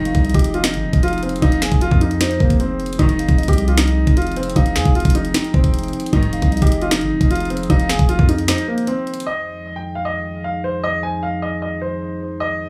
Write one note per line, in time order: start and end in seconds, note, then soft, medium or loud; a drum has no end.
0.00 0.14 F1 loud
0.00 6.09 F3 medium
0.00 9.23 C4 medium
0.00 0.32 D#4 loud
0.00 2.95 D#4 medium
0.00 6.09 G#4 medium
0.05 0.24 F5 medium
0.05 closed hi-hat medium
0.15 0.34 C2 loud
0.15 kick loud
0.15 closed hi-hat medium
0.25 0.99 D#5 medium
0.25 closed hi-hat medium
0.30 closed hi-hat medium
0.34 0.75 F1 loud
0.34 0.51 G4 medium
0.34 kick medium
0.34 closed hi-hat medium
0.39 closed hi-hat medium
0.44 closed hi-hat medium
0.54 0.63 F4 medium
0.54 closed hi-hat medium
0.64 1.01 D#4 medium
0.64 finger snap loud
0.64 snare loud
0.64 closed hi-hat medium
0.74 0.85 G#1 loud
0.74 closed hi-hat medium
0.83 0.93 F1 loud
0.93 1.40 F1 loud
0.93 kick loud
0.93 closed hi-hat medium
1.03 1.20 F4 medium
1.03 closed hi-hat medium
1.08 closed hi-hat medium
1.13 closed hi-hat soft
1.18 closed hi-hat soft
1.23 1.40 C4 medium
1.23 closed hi-hat medium
1.29 closed hi-hat medium
1.36 closed hi-hat medium
1.42 1.71 F1 loud
1.42 1.59 D#4 loud
1.42 1.79 F5 loud
1.42 kick loud
1.42 closed hi-hat medium
1.52 closed hi-hat medium
1.62 1.79 G#4 medium
1.62 finger snap medium
1.62 snare medium
1.62 closed hi-hat medium
1.72 1.91 F1 loud
1.72 kick loud
1.72 closed hi-hat medium
1.81 1.98 F4 medium
1.81 closed hi-hat medium
1.91 2.38 F2 loud
1.91 kick loud
2.01 2.18 D#4 medium
2.01 closed hi-hat medium
2.11 closed hi-hat medium
2.21 2.38 D#4 medium
2.21 2.58 C5 medium
2.21 finger snap loud
2.21 snare loud
2.21 closed hi-hat medium
2.31 closed hi-hat medium
2.40 2.97 F1 loud
2.40 2.57 A#3 medium
2.40 kick loud
2.50 kick loud
2.50 closed hi-hat medium
2.60 2.97 C4 medium
2.60 closed hi-hat medium
2.80 closed hi-hat soft
2.86 closed hi-hat medium
2.93 closed hi-hat medium
2.99 3.27 F1 loud
2.99 3.16 C2 loud
2.99 3.16 G#2 medium
2.99 3.16 D#3 loud
2.99 3.45 D#4 loud
2.99 9.23 D#4 medium
2.99 kick loud
2.99 closed hi-hat medium
3.09 closed hi-hat medium
3.19 3.37 F5 medium
3.19 closed hi-hat medium
3.29 3.47 F1 loud
3.29 kick loud
3.29 closed hi-hat medium
3.38 4.13 D#5 loud
3.38 closed hi-hat medium
3.43 closed hi-hat medium
3.48 4.05 C2 loud
3.48 3.65 G4 medium
3.48 kick medium
3.48 closed hi-hat medium
3.53 closed hi-hat medium
3.58 closed hi-hat medium
3.68 3.76 F4 medium
3.68 closed hi-hat medium
3.78 4.15 D#4 loud
3.78 finger snap loud
3.78 snare loud
3.78 closed hi-hat medium
3.88 closed hi-hat medium
4.07 4.54 F1 loud
4.07 kick loud
4.07 closed hi-hat medium
4.17 4.34 F4 medium
4.17 closed hi-hat medium
4.22 closed hi-hat medium
4.27 closed hi-hat soft
4.32 closed hi-hat soft
4.36 4.53 C4 medium
4.36 closed hi-hat medium
4.43 closed hi-hat medium
4.50 closed hi-hat medium
4.56 4.77 F1 loud
4.56 4.73 D#4 loud
4.56 4.93 F5 loud
4.56 kick loud
4.56 closed hi-hat medium
4.66 closed hi-hat medium
4.76 4.85 F2 medium
4.76 4.93 G#4 medium
4.76 finger snap medium
4.76 snare medium
4.76 closed hi-hat medium
4.85 5.04 F1 loud
4.85 kick loud
4.85 closed hi-hat medium
4.95 5.12 F4 medium
4.95 closed hi-hat medium
5.00 closed hi-hat medium
5.05 5.33 F1 loud
5.05 kick medium
5.05 closed hi-hat medium
5.10 closed hi-hat medium
5.15 5.32 D#4 medium
5.15 closed hi-hat medium
5.25 closed hi-hat medium
5.34 5.51 D#4 medium
5.34 6.09 G5 loud
5.34 finger snap loud
5.34 snare loud
5.34 closed hi-hat medium
5.44 closed hi-hat medium
5.54 5.92 F1 loud
5.54 6.09 C4 medium
5.54 kick loud
5.64 kick loud
5.64 closed hi-hat medium
5.74 closed hi-hat medium
5.79 closed hi-hat medium
5.83 closed hi-hat soft
5.88 closed hi-hat soft
5.93 closed hi-hat medium
6.00 closed hi-hat medium
6.06 closed hi-hat medium
6.13 6.41 F1 loud
6.13 6.30 C2 loud
6.13 6.30 G#2 medium
6.13 6.30 D#3 loud
6.13 9.23 F3 medium
6.13 6.59 D#4 loud
6.13 9.23 G#4 medium
6.13 kick loud
6.13 closed hi-hat medium
6.23 closed hi-hat medium
6.33 6.51 F5 medium
6.33 closed hi-hat medium
6.42 6.61 C2 loud
6.42 kick loud
6.42 closed hi-hat medium
6.52 7.27 D#5 medium
6.52 closed hi-hat medium
6.57 closed hi-hat medium
6.62 7.03 F1 loud
6.62 6.79 G4 medium
6.62 kick loud
6.62 closed hi-hat medium
6.67 closed hi-hat medium
6.72 closed hi-hat medium
6.82 6.90 F4 medium
6.82 closed hi-hat medium
6.91 7.28 D#4 loud
6.91 finger snap loud
6.91 snare loud
6.91 closed hi-hat medium
7.01 7.12 G#1 loud
7.01 closed hi-hat medium
7.11 7.20 F1 loud
7.21 7.68 F1 loud
7.21 kick loud
7.21 closed hi-hat medium
7.31 7.47 F4 medium
7.31 closed hi-hat medium
7.36 closed hi-hat medium
7.40 closed hi-hat soft
7.45 closed hi-hat soft
7.50 7.67 C4 medium
7.50 closed hi-hat medium
7.57 closed hi-hat medium
7.63 closed hi-hat medium
7.69 7.98 F1 loud
7.69 7.87 D#4 loud
7.69 8.06 F5 loud
7.69 kick loud
7.69 closed hi-hat medium
7.80 closed hi-hat medium
7.89 8.06 G#4 medium
7.89 finger snap medium
7.89 snare medium
7.89 closed hi-hat medium
7.99 8.18 F1 loud
7.99 kick loud
7.99 closed hi-hat medium
8.09 8.26 F4 medium
8.09 closed hi-hat medium
8.19 8.47 F2 loud
8.19 kick loud
8.29 8.46 D#4 medium
8.29 closed hi-hat medium
8.38 closed hi-hat medium
8.48 8.65 D#4 medium
8.48 8.85 C5 medium
8.48 finger snap loud
8.48 snare loud
8.48 closed hi-hat medium
8.58 closed hi-hat medium
8.68 8.85 A#3 medium
8.78 closed hi-hat medium
8.87 9.24 C4 medium
8.87 closed hi-hat medium
9.07 closed hi-hat soft
9.14 closed hi-hat medium
9.20 closed hi-hat medium
9.26 12.37 F2 medium
9.26 12.69 F3 medium
9.26 12.69 D#4 medium
9.26 12.69 G#4 medium
9.26 9.73 D#5 medium
9.76 9.93 G5 medium
9.95 10.04 F5 medium
10.05 10.42 D#5 medium
10.44 10.61 F5 medium
10.64 10.81 C5 medium
10.84 11.00 D#5 loud
11.03 11.20 G#5 medium
11.23 11.40 F5 medium
11.42 11.59 D#5 medium
11.62 11.79 D#5 medium
11.81 12.37 C5 medium
12.40 12.69 F2 medium
12.40 12.69 D#5 loud